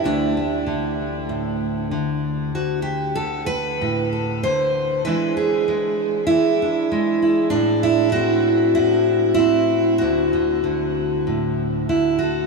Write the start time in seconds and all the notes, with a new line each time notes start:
0.04 D2 D3 A3 D4
0.37 A3
0.67 D3
1.29 A2
1.91 D3
2.55 D2 F#4
2.82 G4
3.15 D3 A4
3.46 B4
3.81 A2
4.13 A4
4.43 D3 C5
5.05 E3 G#3 D4 E4 B4
5.37 G#4
5.68 G#3
6.27 E3 E4
6.62 D4
6.92 G#3
7.22 E4
7.50 A2 D4
7.83 E4
8.12 C4 F#4
8.75 A2 E4
9.34 C4 E4
9.98 D2 D3 F#4
10.33 D3
10.64 D3
11.27 A2
11.89 D3 E4
12.19 F#4 A4